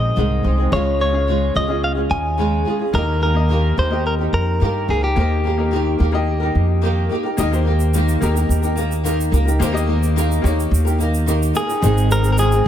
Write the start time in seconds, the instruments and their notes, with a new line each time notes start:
Already playing: upright bass A#1, nylon-string guitar G#3 C4 D#4 G#4, upright piano C4 D#4 G#4 D#5, clean electric guitar D#5
0.16 upright bass C2, nylon-string guitar G#2 D#3 G#3 C4 D#4 G#4
0.43 upright bass C2, nylon-string guitar G#3 C4 D#4 G#4
0.57 nylon-string guitar G#3 C4 D#4 G#4
0.71 upright bass C#2, nylon-string guitar C#3 G#3 C#4 F4 G#4, upright piano C#4 F4 G#4 F5, clean electric guitar C#5
0.99 nylon-string guitar G#3 C#4 F4 G#4, clean electric guitar C#5
1.12 upright piano C#4 F4 G#4 F5
1.27 nylon-string guitar C#3 G#3 C#4 F4 G#4
1.54 upright bass C#2, nylon-string guitar G#3 C#4 F4 G#4, clean electric guitar D#5
1.68 upright piano C#4 F4 G#4 D#5, nylon-string guitar C#4 F4 G#4
1.84 clean electric guitar F5
1.95 nylon-string guitar C#4 F4 G#4
2.10 upright bass D#2, clean electric guitar G#5
2.37 nylon-string guitar C#3 G#3 C#4 F4 G#4
2.65 nylon-string guitar G#3 C#4 F4 G#4
2.79 nylon-string guitar C#4 F4 G#4
2.93 upright bass D#2, nylon-string guitar D#3 A#3 D#4 G4 A#4, upright piano A#3 D#4 G4 D#5, clean electric guitar A#4
3.20 nylon-string guitar A#3 D#4 G4 A#4, clean electric guitar A#4
3.34 upright piano A#3 D#4 G4 D#5
3.49 nylon-string guitar D#3 A#3 D#4 G4 A#4
3.77 upright bass D#2, nylon-string guitar A#3 D#4 G4 A#4, clean electric guitar C5
3.90 upright piano A#3 D#4 G4 D#5, nylon-string guitar D#4 G4 A#4
4.07 clean electric guitar A#4
4.18 nylon-string guitar D#4 G4 A#4
4.33 upright bass F2, clean electric guitar A#4
4.60 upright bass G2, nylon-string guitar D#3 A#3 D#4 G4 A#4
4.88 upright bass C#2, nylon-string guitar A#3 D#4 G4 A#4, clean electric guitar G#4
5.01 nylon-string guitar D#4 G4 A#4, clean electric guitar G4
5.16 upright bass D#2, nylon-string guitar D#3 A#3 D#4 G4 A#4, upright piano A#3 D#4 G4 C5
5.44 nylon-string guitar A#3 D#4 G4 A#4
5.57 upright piano A#3 D#4 G4 A#4
5.71 nylon-string guitar D#3 A#3 D#4 G4 A#4
5.99 upright bass D#2, nylon-string guitar A#3 D#4 G4 A#4
6.12 upright piano A#3 D#4 G4 D#5, nylon-string guitar D#4 G4 A#4
6.40 nylon-string guitar D#4 G4 A#4
6.55 upright bass F2
6.81 nylon-string guitar D#3 A#3 D#4 G4 A#4
7.09 nylon-string guitar A#3 D#4 G4 A#4
7.23 nylon-string guitar D#4 G4 A#4
7.37 upright bass D#2, nylon-string guitar D#3 A#3 D#4 G4 A#4, upright piano A#3 D#4 G4 D#5, shaker
7.51 upright piano A#3 D#4 G4 C5, shaker
7.65 nylon-string guitar A#3 D#4 G4 A#4
7.80 shaker
7.93 nylon-string guitar D#3 A#3 D#4 G4 A#4, shaker
8.09 shaker
8.21 upright bass D#2, nylon-string guitar A#3 D#4 G4 A#4, upright piano A#3 D#4 G4 A#4, shaker
8.35 nylon-string guitar D#4 G4 A#4, shaker
8.49 upright bass D#2, shaker
8.62 nylon-string guitar D#4 G4 A#4, shaker
8.76 nylon-string guitar A#3 D#4 G4 A#4, shaker
8.92 shaker
9.04 nylon-string guitar D#3 A#3 D#4 G4 A#4, shaker
9.21 shaker
9.31 upright bass C#2, nylon-string guitar A#3 D#4 G4 A#4, shaker
9.45 nylon-string guitar D#4 G4 A#4, shaker
9.59 upright bass D#2, nylon-string guitar D#3 A#3 D#4 G4 A#4, upright piano A#3 D#4 G4 C5, shaker
9.72 upright piano A#3 D#4 G4 D#5
9.77 shaker
9.87 nylon-string guitar A#3 D#4 G4 A#4
10.03 shaker
10.16 nylon-string guitar D#3 A#3 D#4 G4 A#4, shaker
10.32 shaker
10.42 upright bass D#2, upright piano A#3 D#4 G4 C#5, nylon-string guitar A#3 D#4, shaker
10.46 nylon-string guitar G4 A#4
10.60 shaker
10.71 upright bass D#2, shaker
10.85 nylon-string guitar D#4 G4 A#4, shaker
10.99 nylon-string guitar A#3 D#4 G4 A#4, shaker
11.14 shaker
11.26 nylon-string guitar D#3 A#3 D#4 G4 A#4, shaker
11.43 shaker
11.54 nylon-string guitar A#3 D#4 G4 A#4, clean electric guitar G#4, shaker
11.68 nylon-string guitar D#4 G4 A#4, shaker
11.81 upright bass G#1, nylon-string guitar G#2 D#3 G#3 C4 D#4 G#4, upright piano D#4 G#4 C5, shaker
11.98 shaker
12.09 nylon-string guitar G#3 C4 D#4 G#4, clean electric guitar A#4, shaker
12.23 nylon-string guitar G#3 C4 D#4 G#4, shaker
12.32 clean electric guitar A#4
12.37 nylon-string guitar G#2 D#3 G#3 C4 D#4 G#4, clean electric guitar G#4, shaker
12.51 nylon-string guitar G#3 C4 D#4 G#4, shaker
12.64 nylon-string guitar G#3